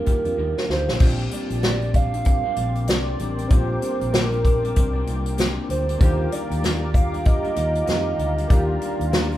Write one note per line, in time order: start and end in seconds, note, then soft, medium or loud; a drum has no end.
0.00 0.05 A#3 medium
0.00 0.06 D4 medium
0.00 0.07 F4 medium
0.00 0.07 G4 medium
0.00 0.70 A#4 medium
0.05 0.25 D#3 medium
0.05 0.25 G3 medium
0.05 1.00 A#3 soft
0.05 0.98 D4 soft
0.05 0.25 D4 medium
0.05 1.00 F4 soft
0.05 0.23 F4 medium
0.05 1.01 G4 soft
0.05 kick medium
0.05 closed hi-hat medium
0.24 0.35 F2 medium
0.24 0.37 G3 soft
0.24 0.38 D4 medium
0.24 0.37 F4 medium
0.24 closed hi-hat soft
0.37 0.52 D#2 medium
0.37 0.67 D#3 medium
0.37 0.68 G3 medium
0.37 0.70 D4 medium
0.37 0.70 F4 medium
0.58 snare medium
0.68 0.84 D2 medium
0.68 1.00 D#3 medium
0.68 1.00 G3 medium
0.68 1.01 D4 medium
0.68 1.02 F4 medium
0.68 0.99 C5 medium
0.68 snare medium
0.88 0.98 A#1 medium
0.88 snare medium
0.97 1.25 A#1 loud
0.97 1.30 A#2 medium
0.97 1.32 G3 medium
0.97 3.45 C4 medium
0.97 3.46 D4 medium
0.97 3.47 F4 medium
0.97 5.97 A#4 medium
0.97 1.15 C5 loud
0.97 5.96 G5 medium
0.97 5.96 C6 medium
0.97 5.97 D6 medium
0.97 kick loud
0.97 crash loud
1.02 1.32 C4 medium
1.02 1.33 D4 medium
1.02 3.48 G4 medium
1.19 closed hi-hat soft
1.31 1.62 A#2 medium
1.31 1.62 G3 medium
1.31 1.63 C4 medium
1.31 1.64 D4 medium
1.31 1.97 D5 loud
1.31 closed hi-hat medium
1.50 2.40 A#1 loud
1.50 closed hi-hat medium
1.63 1.82 A#2 medium
1.63 1.82 G3 medium
1.63 1.82 C4 medium
1.63 1.80 D4 medium
1.63 snare loud
1.63 closed hi-hat medium
1.81 2.14 G3 soft
1.81 2.13 C4 soft
1.81 2.11 D4 medium
1.81 closed hi-hat soft
1.94 2.25 F5 loud
1.94 kick medium
1.94 closed hi-hat medium
2.12 2.46 G3 soft
2.12 2.44 C4 soft
2.12 2.42 D4 medium
2.12 closed hi-hat medium
2.25 2.90 F5 loud
2.25 kick medium
2.25 closed hi-hat medium
2.44 2.56 G3 soft
2.44 2.57 C4 medium
2.44 2.56 D4 medium
2.56 2.88 A#1 loud
2.56 2.86 A#2 medium
2.56 2.88 G3 medium
2.56 2.88 C4 medium
2.56 2.89 D4 medium
2.56 closed hi-hat medium
2.75 closed hi-hat medium
2.88 3.13 C2 medium
2.88 3.17 A#2 medium
2.88 3.19 G3 medium
2.88 3.20 C4 medium
2.88 3.20 D4 medium
2.88 3.53 D5 loud
2.88 snare loud
2.88 closed hi-hat medium
3.19 3.44 A1 medium
3.19 3.38 A#2 medium
3.19 3.38 G3 medium
3.19 3.38 C4 medium
3.19 3.36 D4 medium
3.19 closed hi-hat medium
3.37 3.49 G3 soft
3.37 3.50 C4 soft
3.37 3.50 D4 medium
3.37 closed hi-hat medium
3.47 3.76 A#1 loud
3.47 3.79 A#2 medium
3.47 3.81 G3 medium
3.47 5.95 C4 medium
3.47 3.81 C4 medium
3.47 5.96 D4 medium
3.47 5.96 F4 medium
3.47 4.15 C5 medium
3.47 kick loud
3.47 closed hi-hat medium
3.52 3.82 D4 medium
3.52 5.97 G4 medium
3.80 4.11 A#2 medium
3.80 4.12 G3 medium
3.80 4.13 C4 medium
3.80 4.13 D4 medium
3.80 closed hi-hat medium
4.01 4.72 A#1 loud
4.01 closed hi-hat soft
4.12 4.32 A#2 medium
4.12 4.32 G3 medium
4.12 4.32 C4 medium
4.12 4.30 D4 medium
4.12 5.38 A#4 medium
4.12 snare loud
4.12 closed hi-hat medium
4.31 4.64 G3 soft
4.31 4.62 C4 soft
4.31 4.61 D4 medium
4.31 closed hi-hat soft
4.45 kick medium
4.45 closed hi-hat medium
4.62 4.95 G3 soft
4.62 4.94 C4 soft
4.62 4.92 D4 medium
4.62 closed hi-hat medium
4.76 5.01 C2 loud
4.76 kick medium
4.76 closed hi-hat medium
4.93 5.06 G3 soft
4.93 5.07 C4 medium
4.93 5.06 D4 medium
5.06 5.57 C2 medium
5.06 5.36 A#2 medium
5.06 5.37 G3 medium
5.06 5.38 C4 medium
5.06 5.38 D4 medium
5.06 closed hi-hat medium
5.26 closed hi-hat medium
5.37 5.67 A#2 medium
5.37 5.68 G3 loud
5.37 5.69 C4 loud
5.37 5.70 D4 loud
5.37 snare loud
5.37 closed hi-hat medium
5.68 5.94 D2 medium
5.68 5.87 A#2 medium
5.68 5.88 G3 medium
5.68 5.88 C4 medium
5.68 5.85 D4 medium
5.68 5.99 C5 medium
5.68 closed hi-hat medium
5.87 5.99 G3 soft
5.87 6.01 C4 soft
5.87 6.00 D4 medium
5.87 closed hi-hat medium
5.98 6.26 D#2 loud
5.98 8.45 D3 medium
5.98 6.29 D#3 medium
5.98 6.30 G3 medium
5.98 8.45 A#3 medium
5.98 6.31 D4 medium
5.98 8.46 F4 medium
5.98 6.32 F4 medium
5.98 9.38 G4 medium
5.98 6.34 C5 medium
5.98 9.38 F5 medium
5.98 9.38 A#5 medium
5.98 8.47 D6 medium
5.98 kick loud
5.98 closed hi-hat medium
6.03 8.47 G4 medium
6.30 6.61 D#3 medium
6.30 6.62 G3 medium
6.30 6.63 D4 medium
6.30 6.63 F4 medium
6.30 6.96 D5 loud
6.30 closed hi-hat medium
6.50 7.40 D#2 loud
6.50 closed hi-hat medium
6.62 6.81 D#3 medium
6.62 6.82 G3 medium
6.62 6.81 D4 medium
6.62 6.79 F4 loud
6.62 snare loud
6.62 closed hi-hat medium
6.81 7.14 G3 soft
6.81 7.12 D4 soft
6.81 7.11 F4 medium
6.94 7.27 F5 loud
6.94 kick medium
6.94 closed hi-hat medium
7.12 7.45 G3 soft
7.12 7.43 D4 medium
7.12 7.42 F4 medium
7.12 closed hi-hat medium
7.25 7.88 D#5 loud
7.25 kick loud
7.25 closed hi-hat medium
7.43 7.55 G3 soft
7.43 7.57 D4 medium
7.43 7.56 F4 medium
7.43 closed hi-hat soft
7.55 7.81 D#2 loud
7.55 7.85 D#3 medium
7.55 7.86 G3 medium
7.55 7.87 F4 medium
7.55 closed hi-hat medium
7.75 closed hi-hat medium
7.86 8.12 F2 medium
7.86 8.16 D#3 medium
7.86 8.17 G3 medium
7.86 8.19 F4 medium
7.86 8.53 D#5 loud
7.86 snare loud
7.86 closed hi-hat medium
8.17 8.44 D2 medium
8.17 8.37 D#3 medium
8.17 8.37 G3 medium
8.17 8.37 D4 medium
8.17 8.35 F4 medium
8.17 closed hi-hat medium
8.36 8.49 G3 soft
8.36 8.49 D4 soft
8.36 8.49 F4 medium
8.36 closed hi-hat medium
8.48 8.75 D#2 loud
8.48 8.79 D#3 medium
8.48 8.80 G3 medium
8.48 9.38 A#3 medium
8.48 9.38 D4 medium
8.48 8.81 D4 medium
8.48 9.38 F4 medium
8.48 8.82 F4 medium
8.48 9.12 D5 medium
8.48 9.38 C6 medium
8.48 kick loud
8.48 closed hi-hat medium
8.53 9.38 G4 medium
8.80 9.10 D#3 medium
8.80 9.11 G3 medium
8.80 9.12 D4 medium
8.80 9.13 F4 medium
8.80 closed hi-hat medium
9.00 9.38 D#2 medium
9.00 closed hi-hat medium
9.12 9.31 D#3 medium
9.12 9.31 G3 medium
9.12 9.31 D4 medium
9.12 9.29 F4 medium
9.12 9.38 D5 medium
9.12 snare loud
9.12 closed hi-hat medium
9.30 9.38 G3 soft
9.30 9.38 D4 soft
9.30 9.38 F4 soft
9.30 closed hi-hat soft